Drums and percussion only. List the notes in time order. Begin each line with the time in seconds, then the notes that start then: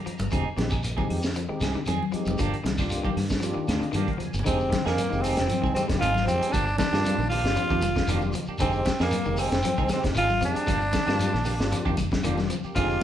0.06 closed hi-hat, shekere
0.18 closed hi-hat, high conga, shekere
0.31 kick, closed hi-hat, high conga, claves, shekere
0.57 snare, closed hi-hat, high conga, shekere
0.70 kick, closed hi-hat, claves, shekere
0.83 closed hi-hat, high conga, shekere
0.98 kick, high conga, shekere
1.10 open hi-hat, claves
1.22 snare, shekere
1.35 closed hi-hat, shekere
1.61 snare, closed hi-hat, claves, shekere
1.74 shekere
1.85 closed hi-hat, high conga, claves, shekere
2.03 high conga
2.12 closed hi-hat, shekere
2.26 high conga, shekere
2.38 kick, closed hi-hat, claves, shekere
2.54 closed hi-hat
2.64 snare, closed hi-hat, high conga, shekere
2.78 kick, snare, claves, shekere
2.89 closed hi-hat, high conga, shekere
3.04 kick, high conga, shekere
3.17 snare, open hi-hat, high conga, claves
3.30 kick, snare, shekere
3.42 closed hi-hat, shekere
3.68 snare, closed hi-hat, claves, shekere
3.81 closed hi-hat, shekere
3.93 closed hi-hat, high conga, claves, shekere
4.08 kick, closed hi-hat
4.13 low conga
4.20 closed hi-hat, low conga, shekere
4.34 closed hi-hat, shekere
4.39 low conga
4.46 kick, closed hi-hat, claves, shekere
4.60 shekere
4.72 kick, snare, closed hi-hat, high conga, shekere
4.86 snare, claves, shekere
4.98 closed hi-hat, high conga, shekere
5.12 shekere
5.24 open hi-hat, low conga, claves, shekere
5.37 snare, closed hi-hat, shekere
5.49 closed hi-hat, high conga, shekere
5.64 kick, shekere
5.76 closed hi-hat, high conga, claves, shekere
5.89 kick, snare, closed hi-hat, high conga, shekere
6.02 closed hi-hat, claves, shekere
6.14 snare, high conga, shekere
6.27 closed hi-hat, low conga, shekere
6.42 closed hi-hat, shekere
6.53 kick, closed hi-hat, claves, shekere
6.68 shekere
6.78 kick, snare, closed hi-hat, high conga, shekere
6.93 snare, claves, shekere
7.05 closed hi-hat, high conga, shekere
7.19 shekere
7.30 open hi-hat, low conga, claves, shekere
7.45 snare, shekere
7.56 closed hi-hat, shekere
7.70 kick, shekere
7.81 closed hi-hat, high conga, claves, shekere
7.95 kick, snare, high conga, shekere
8.07 closed hi-hat, claves, shekere
8.21 high conga, shekere
8.32 closed hi-hat, low conga, shekere
8.46 shekere
8.58 kick, closed hi-hat, claves, shekere
8.73 shekere
8.85 kick, snare, closed hi-hat, high conga, shekere
8.99 snare, claves, shekere
9.11 closed hi-hat, high conga, shekere
9.24 low conga, shekere
9.37 open hi-hat, low conga, claves, shekere
9.51 snare, closed hi-hat, shekere
9.62 closed hi-hat, high conga, shekere
9.76 kick, shekere
9.89 snare, closed hi-hat, high conga, claves, shekere
10.03 kick, snare, closed hi-hat, shekere
10.14 closed hi-hat, claves, shekere
10.29 high conga, shekere
10.41 closed hi-hat, low conga, shekere
10.55 closed hi-hat, shekere
10.67 kick, snare, closed hi-hat, claves, shekere
10.81 shekere
10.93 kick, snare, closed hi-hat, high conga, shekere
11.07 snare, claves, shekere
11.19 closed hi-hat, high conga, shekere
11.34 snare, shekere
11.44 open hi-hat, low conga, claves, shekere
11.59 snare, shekere
11.72 closed hi-hat, shekere
11.86 kick, shekere
11.97 kick, closed hi-hat, high conga, claves, shekere
12.12 kick, snare, high conga, shekere
12.23 closed hi-hat, claves, shekere
12.38 snare, high conga, shekere
12.50 closed hi-hat, low conga, shekere
12.64 shekere
12.76 kick, closed hi-hat, claves, shekere
12.90 shekere